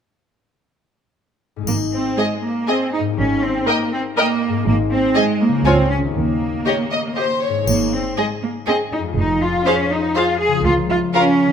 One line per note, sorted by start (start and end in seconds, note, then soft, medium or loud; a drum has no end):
1.56 2.99 G#2 soft
1.56 3.17 G#3 soft
1.60 3.08 D#4 soft
1.60 3.17 G#4 soft
1.67 2.07 G#1 soft
1.67 1.75 A#3 medium
1.67 triangle soft
1.92 2.17 C4 soft
2.17 2.43 G#3 medium
2.17 2.25 G#4 soft
2.17 2.26 D#5 soft
2.17 2.26 G#5 soft
2.43 2.67 A#3 medium
2.67 2.92 C4 medium
2.67 2.75 G#4 soft
2.67 2.76 D#5 soft
2.67 2.76 G#5 soft
2.93 3.01 D#4 medium
3.00 4.48 G#2 soft
3.04 4.62 A#3 soft
3.09 4.57 D#4 soft
3.13 3.57 G#1 medium
3.13 4.66 G4 soft
3.18 3.42 C#4 medium
3.43 3.67 C4 medium
3.67 3.92 A#3 medium
3.67 3.75 A#4 soft
3.67 3.76 D#5 soft
3.67 3.77 G5 soft
3.93 4.01 C4 medium
4.17 4.66 A#3 medium
4.17 4.25 A#4 medium
4.17 4.26 D#5 medium
4.17 4.26 G5 medium
4.49 5.59 G#2 medium
4.53 6.11 C4 soft
4.58 5.63 D#4 soft
4.62 5.60 G#4 soft
4.67 5.06 G#1 medium
4.67 4.75 A#3 medium
4.91 5.15 C4 medium
5.16 5.41 G#3 medium
5.16 5.24 G#4 soft
5.16 5.24 D#5 soft
5.16 5.24 G#5 medium
5.41 5.66 A#3 medium
5.48 6.09 C#3 soft
5.53 6.11 C#4 soft
5.57 6.13 F4 soft
5.61 6.15 G#4 soft
5.66 6.05 C#2 medium
5.66 5.90 C4 medium
5.66 5.74 F4 soft
5.66 5.74 C#5 soft
5.66 5.74 G#5 soft
5.90 5.98 C#4 medium
5.98 7.60 D#3 soft
6.02 7.63 A#3 soft
6.06 7.57 D#4 soft
6.11 7.67 G4 soft
6.15 6.56 D#2 soft
6.15 7.15 A#3 medium
6.66 6.74 G4 soft
6.66 6.75 C#5 soft
6.66 6.74 D#5 soft
6.92 7.00 D#5 soft
7.16 7.24 G4 soft
7.16 7.42 C5 soft
7.16 7.25 D#5 soft
7.42 7.67 C#5 soft
7.49 9.10 G#2 soft
7.53 9.02 G#3 soft
7.58 9.14 D#4 soft
7.63 9.11 G#4 soft
7.67 8.07 G#1 medium
7.67 7.91 A#3 medium
7.67 triangle soft
7.92 8.17 C4 soft
8.17 8.25 G#3 medium
8.17 8.26 G#4 soft
8.17 8.26 D#5 soft
8.42 8.50 A#3 medium
8.67 8.76 C4 medium
8.67 8.75 G#4 soft
8.67 8.75 D#5 soft
8.92 9.00 D#4 medium
8.99 10.58 F2 soft
9.04 10.60 G#3 soft
9.08 10.55 F4 soft
9.13 9.56 F1 medium
9.13 10.65 G#4 soft
9.18 9.42 D#4 medium
9.42 9.66 F4 medium
9.66 9.91 C#4 medium
9.66 9.74 G#4 soft
9.66 9.74 C5 soft
9.66 9.75 F5 soft
9.91 10.16 D#4 medium
10.15 10.40 F4 medium
10.15 10.24 G#4 soft
10.15 10.23 C5 soft
10.15 10.25 F5 medium
10.40 10.64 G#4 medium
10.48 11.53 C#3 soft
10.52 11.53 F3 soft
10.57 11.53 F4 soft
10.61 11.04 C#2 medium
10.61 11.53 A#4 soft
10.65 10.73 F4 medium
10.90 10.98 F4 medium
11.14 11.53 C#4 medium
11.14 11.22 F4 soft
11.14 11.23 A#4 soft
11.14 11.23 F5 soft
11.46 11.53 D#3 soft